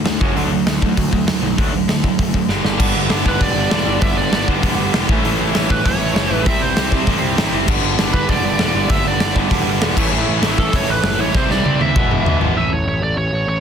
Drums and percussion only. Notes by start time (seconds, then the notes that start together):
0.05 snare, open hi-hat
0.21 kick
0.37 open hi-hat
0.67 snare, open hi-hat
0.82 kick
0.97 kick, open hi-hat
1.13 kick
1.28 snare, open hi-hat
1.58 kick, open hi-hat
1.89 snare, open hi-hat
2.04 kick
2.19 kick, open hi-hat
2.34 kick
2.49 snare
2.65 snare
2.80 kick, crash
3.10 snare, open hi-hat
3.26 kick
3.41 kick, open hi-hat
3.71 snare
4.01 kick, open hi-hat
4.33 snare, open hi-hat
4.48 kick
4.63 kick, open hi-hat
4.94 snare, open hi-hat
5.09 kick
5.25 open hi-hat
5.55 snare, open hi-hat
5.70 kick
5.86 kick, open hi-hat
6.16 snare, open hi-hat
6.46 kick, open hi-hat
6.77 snare, open hi-hat
6.92 kick
7.07 kick, open hi-hat
7.38 snare, open hi-hat
7.68 kick, crash
7.99 snare, open hi-hat
8.14 kick
8.29 kick, open hi-hat
8.59 snare, open hi-hat
8.89 kick, open hi-hat
9.20 snare, open hi-hat
9.36 kick
9.51 kick, open hi-hat
9.82 snare, open hi-hat
9.97 kick, crash
10.43 snare, open hi-hat
10.58 kick
10.73 kick, open hi-hat
11.03 snare, open hi-hat
11.35 kick, snare
11.50 snare
11.66 high tom
11.81 high tom
11.96 kick, mid tom
12.11 mid tom
12.26 floor tom
12.41 floor tom